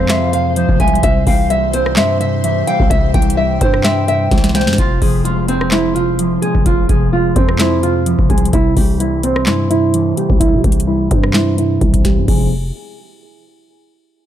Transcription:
Already playing: F2 C3 F3 G#3 C4 F4 C5 F5
0.09 C5 E5, snare, clap, closed hi-hat
0.33 C3 F5, closed hi-hat
0.56 F3 C5, closed hi-hat
0.69 F1, kick
0.80 C2 G#3 E5 G#5, kick, closed hi-hat
0.88 closed hi-hat
0.95 closed hi-hat
1.03 C2 C3 G3 C4 E4 C5 E5, kick, closed hi-hat
1.27 C2 E3 F5 G5, kick, open hi-hat
1.50 G3 E5, closed hi-hat
1.73 C4 C5, closed hi-hat
1.86 cross-stick
1.96 G2 C5 E5, snare, clap, closed hi-hat
2.20 C3 E5, closed hi-hat
2.44 E3 E5, closed hi-hat
2.67 G3 F5 G5, closed hi-hat
2.80 C2, kick
2.90 C2 C3 E5, kick, closed hi-hat
3.14 C2 E3 G5, kick, closed hi-hat, open hi-hat
3.22 closed hi-hat
3.30 closed hi-hat
3.37 G3 E5 G5
3.61 G2 C4 C5, kick, closed hi-hat
3.74 cross-stick
3.84 C5 E5, snare, clap, closed hi-hat
4.08 C3 E5, closed hi-hat
4.31 C2 E3, kick, snare, closed hi-hat
4.38 snare
4.44 snare, closed hi-hat
4.49 snare
4.55 G3 C5 G5, snare, closed hi-hat
4.61 snare
4.67 G2, snare
4.73 snare
4.78 F1 C3 F4, kick, closed hi-hat
5.02 F1 F3 G#4, kick, open hi-hat
5.25 G#3 F4, closed hi-hat
5.48 C4, closed hi-hat
5.61 cross-stick
5.71 E4 C5, snare, clap, closed hi-hat
5.95 C3 F4, closed hi-hat
6.19 F3, closed hi-hat
6.42 G#3 G#4, closed hi-hat
6.55 F1, kick
6.66 F1 C3 F4, kick, closed hi-hat
6.89 F1 F3 G#4, kick, closed hi-hat
7.13 G#3 F4
7.36 F2 C4, kick, closed hi-hat
7.49 cross-stick
7.59 E4 C5, snare, clap, closed hi-hat
7.83 C3 F4, closed hi-hat
8.06 F3, closed hi-hat
8.19 F1, kick
8.30 C2 G#3 G#4, kick, closed hi-hat
8.38 closed hi-hat
8.45 closed hi-hat
8.53 C2 C3 E4, kick, closed hi-hat
8.77 C2 E3 G4, kick, open hi-hat
9.00 G3 E4, closed hi-hat
9.23 C4, closed hi-hat
9.36 cross-stick
9.46 G2 E4 C5, snare, clap, closed hi-hat
9.70 C3 E4, closed hi-hat
9.94 E3, closed hi-hat
10.17 G3 G4, closed hi-hat
10.30 C2, kick
10.40 C3 E4, kick, closed hi-hat
10.53 C3
10.64 C2 E3 G4, kick, closed hi-hat, open hi-hat
10.72 closed hi-hat
10.80 closed hi-hat
10.87 G3 E4
11.11 G2 C4, kick, closed hi-hat
11.23 cross-stick
11.34 E4 C5, snare, clap, closed hi-hat
11.58 C3 E4, closed hi-hat
11.81 C2 E3, kick, closed hi-hat
11.94 kick, closed hi-hat
12.04 G3 G4, kick, snare, closed hi-hat
12.17 G2
12.28 F1 C3 F3 G#3 C4 G#4, kick, crash

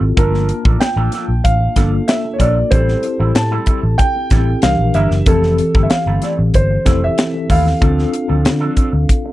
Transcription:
Already playing: C4 E4 F4 G4 A4
0.01 G#1, muted clean electric guitar stroke
0.17 G1 F3 A#3 D4 F4 A4 A#4 A5, kick, closed hi-hat
0.34 snare
0.49 muted clean electric guitar stroke, closed hi-hat
0.65 A1 F3 A#3 D4 A4, kick
0.80 G5, snare, closed hi-hat
0.96 A1 F3 A#3 D4 A4
1.12 F3 A#3 D4 A4, snare, closed hi-hat
1.28 A#1, muted clean electric guitar stroke
1.44 A1 F5, kick, closed hi-hat
1.60 muted clean electric guitar stroke
1.76 G1 F3 A#3 D4 F4 A4, kick, snare, closed hi-hat
1.92 muted clean electric guitar stroke
2.08 E5, muted clean electric guitar stroke, snare, closed hi-hat
2.24 muted clean electric guitar stroke
2.33 C#5
2.39 A#1 F3 A#3 D4 A4 D5, kick, closed hi-hat
2.56 muted clean electric guitar stroke
2.71 A1 G3 C4 E4 G4 A4 C5, kick, closed hi-hat
2.89 snare
3.03 muted clean electric guitar stroke, closed hi-hat
3.19 A1 G3 C4 E4 A4
3.35 A2 A5, snare, closed hi-hat
3.51 G3 C4 E4 A4
3.66 G3 C4 E4 A4, kick, closed hi-hat
3.83 A1, muted clean electric guitar stroke
3.98 G5, kick, closed hi-hat
4.15 muted clean electric guitar stroke
4.30 A1 G3 C4 E4 G4 A4, kick, snare, closed hi-hat
4.47 muted clean electric guitar stroke
4.62 C2 E3 D4 G4 A#4 F5, muted clean electric guitar stroke, snare, closed hi-hat
4.79 A#1, muted clean electric guitar stroke
4.94 G1 G3 D4 E4 A#4 E5, closed hi-hat
5.11 F#1, muted clean electric guitar stroke, snare
5.26 F1 E3 A3 C4 E4 G4 A4, kick, closed hi-hat
5.43 snare
5.58 closed hi-hat
5.74 G1 A3 C4 E4 A4, kick
5.83 E5
5.90 F5, snare, closed hi-hat
6.06 G1 A3 C4 E4 A4
6.22 A3 C4 E4 A4 D5, snare, closed hi-hat
6.38 A1, muted clean electric guitar stroke
6.54 G1 C5, kick, closed hi-hat
6.70 muted clean electric guitar stroke
6.85 F1 A3 C4 E4 G4 A4, kick, snare, closed hi-hat
7.02 E5, muted clean electric guitar stroke
7.17 muted clean electric guitar stroke, snare, closed hi-hat
7.33 muted clean electric guitar stroke
7.49 D#2 A3 C4 E4 A4 F5, kick, open hi-hat
7.65 muted clean electric guitar stroke, snare
7.81 D2 F3 C4 D4 F4 A4, kick, closed hi-hat
7.99 snare
8.13 muted clean electric guitar stroke, closed hi-hat
8.28 D2 F3 C4 D4 A4
8.44 D3, muted clean electric guitar stroke, snare, closed hi-hat
8.60 F3 C4 D4 A4
8.76 F3 C4 D4 A4, kick, closed hi-hat
8.93 D2, muted clean electric guitar stroke
9.09 kick, closed hi-hat
9.25 muted clean electric guitar stroke

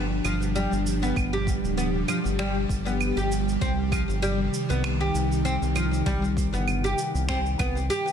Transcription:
Already playing: G1 B2 F3 G3 D4
0.25 G1 F3, claves, shaker
0.42 G4, shaker
0.55 G3, shaker
0.72 G1, shaker
0.87 shaker
1.03 B3, shaker
1.16 G1, kick, claves, shaker
1.33 G4
1.47 kick, shaker
1.64 D1, shaker
1.78 B3, shaker
2.08 F3, claves, shaker
2.25 G1, shaker
2.39 G3, finger snap, shaker
2.69 G1, kick, shaker
2.86 B3, shaker
3.01 claves, shaker
3.17 G1 G4, shaker
3.32 shaker
3.49 shaker
3.61 C2 C3 C4, kick, shaker
3.83 D#3
3.92 F3, kick, claves, shaker
4.09 G1, shaker
4.22 G3, shaker
4.40 D#4
4.54 shaker
4.70 C2 B3, shaker
4.84 finger snap, claves, shaker
5.01 G4
5.14 C2, shaker
5.32 shaker
5.45 C4, shaker
5.62 C2, shaker
5.76 F3, claves, shaker
5.93 shaker
6.06 C2 G3, kick, shaker
6.24 shaker
6.37 kick, shaker
6.53 G1 B3, shaker
6.68 claves, shaker
6.84 G4, shaker
6.99 shaker
7.14 C2, shaker
7.29 C4, finger snap, kick, shaker
7.46 shaker
7.59 C2 B3, kick, claves, shaker
7.77 shaker
7.90 G4, shaker
8.07 shaker

